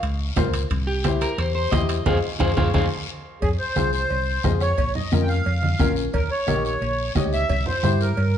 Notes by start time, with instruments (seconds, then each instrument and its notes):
0.03 fingered electric bass C#2, high timbale, long guiro
0.36 fingered electric bass C#2, upright piano F4 A#4 C5, bombo low, bombo rim, high conga, low conga, high timbale, low timbale, short guiro
0.54 high timbale, short guiro
0.70 fingered electric bass C2, bombo low, high timbale, long guiro
0.87 clean electric guitar G4
1.04 upright piano E4 G4 C5, bombo rim, high conga, high timbale, short guiro
1.21 clean electric guitar A#4, high timbale, short guiro
1.38 fingered electric bass E2, clean electric guitar C5, high timbale, long guiro
1.55 clean electric guitar C5
1.72 fingered electric bass E2, upright piano E4 G4 C5, clean electric guitar D#5, bombo low, bombo rim, high conga, high timbale, low timbale, short guiro
1.89 high timbale, short guiro
2.06 fingered electric bass F2, upright piano F4 G#4 C5, clean electric guitar G#4 C5 F5, bombo low, high conga, high timbale, long guiro
2.40 fingered electric bass F2, upright piano F4 G#4 C5, clean electric guitar G#4 C5 F5, bombo low, high conga, high timbale, long guiro
2.57 fingered electric bass F2, upright piano F4 G#4 C5, clean electric guitar G#4 C5 F5, bombo low, high conga, high timbale, long guiro
2.74 fingered electric bass F2, upright piano F4 G#4 C5, clean electric guitar G#4 C5 F5, bombo low, high conga, high timbale, long guiro
3.42 fingered electric bass F2, accordion G#4, bombo low, cowbell, long guiro
3.59 accordion C5
3.76 fingered electric bass C2, upright piano F4 G#4 C5, bombo rim, high conga, short guiro
3.93 accordion C5, short guiro
4.10 fingered electric bass C2, cowbell, long guiro
4.43 fingered electric bass F2, upright piano F4 G#4 C5, accordion D#5, bombo low, bombo rim, high conga, low timbale, short guiro
4.60 accordion C#5, bombo rim, short guiro
4.77 fingered electric bass A#1, bombo low, cowbell, long guiro
4.95 accordion D#5, low conga
5.12 fingered electric bass F2, upright piano C#4 F4 A#4, bombo rim, high conga, short guiro
5.22 accordion G5
5.28 accordion F5, short guiro
5.45 fingered electric bass F2, cowbell, long guiro
5.63 high conga
5.79 fingered electric bass A#1, upright piano C#4 F4 A#4, bombo low, bombo rim, high conga, low conga, short guiro
5.96 short guiro
6.13 fingered electric bass D#2, accordion A#4, bombo low, cowbell, long guiro
6.31 accordion C#5
6.47 fingered electric bass A#1, upright piano D#4 G4 A#4, bombo rim, high conga, short guiro
6.65 accordion C#5, short guiro
6.81 fingered electric bass A#1, cowbell, long guiro
7.15 fingered electric bass C#2, upright piano D#4 G4 C#5, accordion D#5, bombo low, bombo rim, high conga, low timbale, short guiro
7.33 accordion E5, short guiro
7.49 fingered electric bass C2, bombo low, cowbell, long guiro
7.66 accordion C5, low conga
7.83 fingered electric bass G2, upright piano E4 G4 C5, bombo rim, high conga, short guiro
8.01 accordion A#4, short guiro
8.17 fingered electric bass G2, cowbell, long guiro